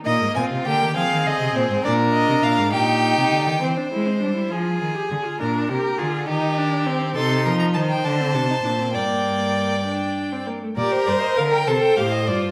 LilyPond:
<<
  \new Staff \with { instrumentName = "Violin" } { \time 6/8 \key ees \major \tempo 4. = 67 ees''8 aes''8 g''8 f''8 ees''8 c''8 | d''8 ees''8 f''8 g''4. | r2. | r2. |
\key g \minor c'''8. bes''16 a''16 g''16 a''4. | g''2~ g''8 r8 | d''16 c''16 d''16 ees''16 f''16 g''16 a''16 g''16 f''16 ees''16 d''16 c''16 | }
  \new Staff \with { instrumentName = "Violin" } { \time 6/8 \key ees \major ees'8 f'8 g'8 aes'4. | bes'4. g'4. | c''4. aes'4. | bes'8 bes'8 aes'8 g'4. |
\key g \minor a'8 bes'8 c''2 | d''2~ d''8 r8 | bes'4. c''4. | }
  \new Staff \with { instrumentName = "Viola" } { \time 6/8 \key ees \major bes8 c'8 bes8 c'4. | d'4. ees'4. | c'16 d'16 e'16 c'16 d'16 e'16 f'8. g'16 aes'16 f'16 | d'8 g'8 f'8 ees'8 d'8 c'8 |
\key g \minor ees'4. d'16 c'16 d'16 ees'16 d'16 c'16 | bes4. d'8. c'16 bes16 a16 | g'8 c''8 bes'8 a'8 g'8 f'8 | }
  \new Staff \with { instrumentName = "Cello" } { \clef bass \time 6/8 \key ees \major bes,16 aes,16 bes,16 c16 d16 ees16 f16 ees16 d16 c16 bes,16 aes,16 | bes,8. c16 bes,16 aes,16 bes,8. c16 d16 ees16 | e8 aes8 g8 f8 ees8 d8 | bes,8 c8 d8 ees4. |
\key g \minor c8 f8 ees8 d8 c8 bes,8 | g,2~ g,8 r8 | bes,8 g,8 d8 c8 a,8 g,8 | }
>>